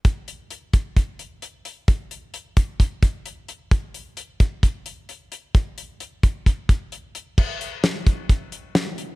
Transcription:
\new DrumStaff \with { instrumentName = "Drums" } \drummode { \time 4/4 \tempo 4 = 131 <hh bd>8 hh8 hh8 <hh bd>8 <hh bd>8 hh8 hh8 hh8 | <hh bd>8 hh8 hh8 <hh bd>8 <hh bd>8 <hh bd>8 hh8 hh8 | <hh bd>8 hh8 hh8 <hh bd>8 <hh bd>8 hh8 hh8 hh8 | <hh bd>8 hh8 hh8 <hh bd>8 <hh bd>8 <hh bd>8 hh8 hh8 |
<cymc bd>8 hh8 <hh sn>8 <hh bd>8 <hh bd>8 hh8 <hh sn>8 hh8 | }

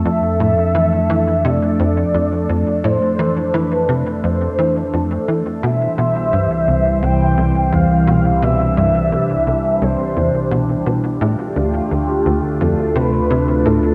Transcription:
<<
  \new Staff \with { instrumentName = "Analog synth lead" } { \time 4/4 \key f \lydian \tempo 4 = 86 e''2 d''2 | c''4 b'4 c''4. r8 | e''2 g''4 f''4 | e''2 c''4. r8 |
g'2 a'8 b'4 a'8 | }
  \new Staff \with { instrumentName = "Analog synth pad" } { \time 4/4 \key f \lydian << { <a a'>1~ | <a a'>1 | <e g>1~ | <e g>1 |
<a f'>1 | } \\ { d'1~ | d'1 | c''1 | d'1~ |
d'1 | } >> }
  \new Staff \with { instrumentName = "Analog synth bass" } { \clef bass \time 4/4 \key f \lydian f,8 a,8 e8 e8 c8 f,8 f,8 f,8 | a,8 e8 e8 c8 f,8 e8 f,8 e8 | b,8 b,8 g,8 c,8 c,8 c,8 e,8 b,8 | b,8 g,8 c,8 c,8 c,8 e,8 b,8 b,8 |
a,8 d,8 d,8 d,8 f,8 c8 c8 a,8 | }
  \new Staff \with { instrumentName = "Synth drone" } { \clef bass \time 4/4 \key f \lydian f,1~ | f,1 | c,1~ | c,1 |
d,1 | }
>>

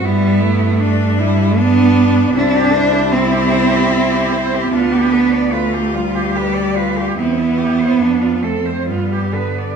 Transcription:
<<
  \new Staff \with { instrumentName = "Cello" } { \time 3/4 \key g \mixolydian \tempo 4 = 75 e'4 d'4 d'4 | e'16 g'16 c''16 g'16 e'16 g'16 c''16 g'16 e'16 g'16 c''16 g'16 | f'16 g'16 b'16 d''16 b'16 g'16 f'16 g'16 b'16 d''16 b'16 g'16 | c'16 e'16 g'16 c''16 d'16 f'16 a'16 c''16 f'16 g'16 b'16 d''16 | }
  \new Staff \with { instrumentName = "Cello" } { \time 3/4 \key g \mixolydian b4 d'8 e'8 d'4 | c'8 e'2~ e'8 | d'4 f'4 g'8 f'8 | e'4 d'8 c'8 b4 | }
  \new Staff \with { instrumentName = "Cello" } { \time 3/4 \key g \mixolydian g8 a4 g8 b4 | d'4 c'2 | b4 a8 g4. | b4. a8 g8 d8 | }
  \new Staff \with { instrumentName = "Cello" } { \clef bass \time 3/4 \key g \mixolydian g,2. | c,2. | d,2. | e,4 f,4 g,4 | }
>>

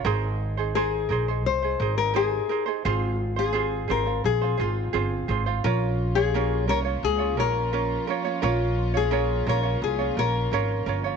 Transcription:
<<
  \new Staff \with { instrumentName = "Nylon-string guitar" } { \time 4/4 \key bes \dorian \tempo 4 = 86 r4 aes'4 c''8. bes'16 aes'8. r16 | f'8. aes'8. bes'8 aes'8 f'4 r8 | f'8. aes'8. bes'8 aes'8 bes'4 r8 | f'8. aes'8. bes'8 aes'8 bes'4 r8 | }
  \new Staff \with { instrumentName = "Ukulele" } { \time 4/4 \key bes \dorian <ees' aes' bes' c''>8. <ees' aes' c''>16 <ees' aes' bes' c''>8 <ees' aes' bes' c''>16 <ees' aes' c''>8 <ees' aes' c''>16 <ees' aes' bes' c''>8 <ees' aes' bes' c''>8 <ees' aes' bes' c''>16 <ees' aes' c''>16 | <c' f' aes' c''>8. <c' f' c''>16 <c' f' aes' c''>8 <c' f' aes' c''>16 <c' f' c''>8 <c' f' c''>16 <c' f' aes' c''>8 <c' f' aes' c''>8 <c' f' aes' c''>16 <c' f' c''>16 | <des' f' bes' des''>8. <des' f' des''>16 <des' f' bes' des''>8 <des' f' bes' des''>16 <des' f' des''>8 <des' f' des''>16 <des' f' bes' des''>8 <des' f' bes' des''>8 <des' f' bes' des''>16 <des' f' des''>16 | <des' f' bes' des''>8. <des' f' des''>16 <des' f' bes' des''>8 <des' f' bes' des''>16 <des' f' des''>8 <des' f' des''>16 <des' f' bes' des''>8 <des' f' bes' des''>8 <des' f' bes' des''>16 <des' f' des''>16 | }
  \new Staff \with { instrumentName = "String section" } { \time 4/4 \key bes \dorian r1 | r1 | <f bes des' f'>1~ | <f bes des' f'>1 | }
  \new Staff \with { instrumentName = "Upright bass" } { \clef bass \time 4/4 \key bes \dorian aes,,4. bes,,8 c,8 aes,,4 r8 | aes,,4. aes,,8 bes,,8 aes,,8 g,,8 aes,,8 | bes,,4. c,8 des,8 bes,,4 r8 | bes,,4. bes,,8 c,8 bes,,8 aes,,8 g,,8 | }
>>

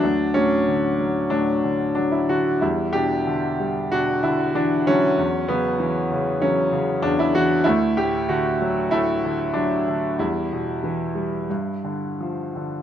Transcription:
<<
  \new Staff \with { instrumentName = "Grand piano" } { \time 4/4 \key d \major \tempo 4 = 94 d'8 cis'4. d'4 d'16 e'16 fis'8 | e'8 g'4. fis'8 e'8 d'8 cis'8~ | cis'8 b4. cis'4 d'16 e'16 fis'8 | e'8 g'8 fis'4 e'4 d'4 |
e'2. r4 | }
  \new Staff \with { instrumentName = "Grand piano" } { \clef bass \time 4/4 \key d \major << { fis8 fis4. fis2 | g8 d'4. d'4. fis8~ | fis8 fis4. fis2 | a2 a2 |
g2. r4 | } \\ { d,8 a,8 d8 fis8 a,8 d8 fis8 d8 | e,8 b,8 d8 g8 b,8 d8 e8 d8 | e,8 cis8 e8 cis8 e8 cis8 e,8 e8 | d,8 a,8 d8 fis8 a,8 d8 fis8 d8 |
e,8 b,8 e8 g8 g,8 d8 f8 d8 | } >> }
>>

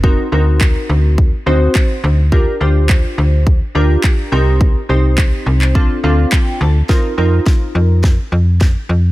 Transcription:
<<
  \new Staff \with { instrumentName = "Synth keys" } { \time 4/4 \key f \mixolydian \tempo 4 = 105 << { r1 | r1 | r2 r8 f''8 g''8 a''8 | r1 | } \\ { <c' ees' fis' bes'>8 <c' ees' fis' bes'>4. r8 <c' ees' fis' c''>4~ <c' ees' fis' c''>16 r16 | <d' f' g' bes'>8 <d' f' g' c''>4. r8 <d' f' g' bes'>4 <c' ees' g' bes'>8~ | <c' ees' g' bes'>8 <c' ees' g' c''>4. <c' d' f' a'>8 <c' d' f' a'>4~ <c' d' f' a'>16 r16 | <c' ees' f' bes'>8 <c' ees' f' bes'>4. r2 | } >> }
  \new Staff \with { instrumentName = "FM bass" } { \clef bass \time 4/4 \key f \mixolydian f,,8 d,4 d,4 d,8 r8 d,8~ | d,8 d,4 d,4 d,8 r8 c,8~ | c,8 c,4 c,4 d,8 r8 d,8 | r8 f,8 r8 f,4 f,4 f,8 | }
  \new DrumStaff \with { instrumentName = "Drums" } \drummode { \time 4/4 bd4 <hc bd>4 bd4 <hc bd>4 | bd4 <hc bd>4 bd4 <hc bd>4 | bd4 <hc bd>8. hc16 bd4 <hc bd>4 | <bd sn>4 <bd sn>4 <bd sn>4 <bd sn>4 | }
>>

